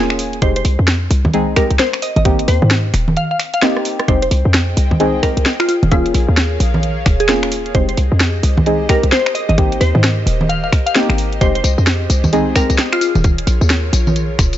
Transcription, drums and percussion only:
0.10 finger snap
0.19 open hi-hat
0.33 closed hi-hat
0.42 kick, closed hi-hat
0.56 closed hi-hat
0.65 open hi-hat
0.88 snare, closed hi-hat
1.11 open hi-hat
1.25 kick, high conga
1.34 closed hi-hat
1.56 finger snap, kick, open hi-hat
1.71 closed hi-hat
1.79 snare, closed hi-hat
1.93 finger snap
2.02 open hi-hat
2.16 closed hi-hat, high conga
2.25 kick, closed hi-hat
2.39 closed hi-hat
2.48 open hi-hat
2.62 high conga
2.71 snare, closed hi-hat
2.94 finger snap, open hi-hat
3.08 high conga
3.17 closed hi-hat
3.40 finger snap, open hi-hat
3.54 closed hi-hat
3.62 cross-stick, snare, closed hi-hat
3.77 cross-stick
3.85 open hi-hat
4.00 cross-stick, closed hi-hat
4.08 kick, closed hi-hat
4.22 closed hi-hat
4.31 open hi-hat
4.54 snare, closed hi-hat
4.77 open hi-hat
4.91 kick, high conga
5.00 closed hi-hat
5.23 finger snap, kick, open hi-hat
5.37 closed hi-hat
5.46 snare, closed hi-hat
5.60 finger snap
5.69 open hi-hat
5.83 closed hi-hat, high conga
5.92 kick, closed hi-hat
6.06 closed hi-hat
6.14 open hi-hat
6.37 snare, closed hi-hat
6.60 open hi-hat
6.74 high conga
6.83 closed hi-hat
7.06 finger snap, kick, open hi-hat
7.20 closed hi-hat
7.29 snare, closed hi-hat
7.43 finger snap
7.52 open hi-hat
7.66 closed hi-hat
7.75 kick, closed hi-hat
7.89 closed hi-hat
7.97 open hi-hat
8.20 snare, closed hi-hat
8.43 open hi-hat
8.57 kick, high conga
8.66 closed hi-hat
8.89 finger snap, kick, open hi-hat
9.03 closed hi-hat
9.12 snare, closed hi-hat
9.26 finger snap
9.35 open hi-hat
9.49 closed hi-hat, high conga
9.58 kick, closed hi-hat
9.72 closed hi-hat
9.81 open hi-hat
9.95 high conga
10.04 snare, closed hi-hat
10.27 open hi-hat
10.41 high conga
10.50 closed hi-hat
10.73 finger snap, kick, open hi-hat
10.87 closed hi-hat
10.96 snare, closed hi-hat
11.10 finger snap
11.18 open hi-hat
11.33 closed hi-hat
11.41 kick, closed hi-hat, tambourine
11.55 closed hi-hat
11.64 open hi-hat, tambourine
11.78 tambourine
11.87 snare, closed hi-hat, tambourine
12.10 open hi-hat, tambourine
12.24 kick, tambourine, high conga
12.33 closed hi-hat, tambourine
12.56 finger snap, kick, open hi-hat, tambourine
12.70 closed hi-hat, tambourine
12.78 snare, closed hi-hat, tambourine
12.93 finger snap
13.01 open hi-hat, tambourine
13.15 closed hi-hat, tambourine, high conga
13.24 kick, closed hi-hat, tambourine
13.38 closed hi-hat
13.47 open hi-hat, tambourine
13.61 tambourine
13.70 snare, closed hi-hat, tambourine
13.93 open hi-hat, tambourine
14.07 tambourine, high conga
14.16 closed hi-hat, tambourine
14.39 finger snap, kick, open hi-hat, tambourine
14.53 closed hi-hat, tambourine

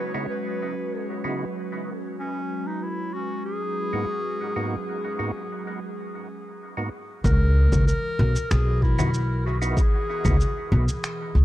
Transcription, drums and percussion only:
7.24 kick, cabasa
7.72 kick, low conga, cabasa
7.88 cabasa
8.36 cabasa
8.51 finger snap, cabasa
8.82 kick
8.99 low conga, cabasa
9.14 cabasa
9.62 cabasa
9.77 kick, cabasa
10.25 kick, low conga, cabasa
10.41 cabasa
10.88 cabasa
11.04 finger snap, cabasa

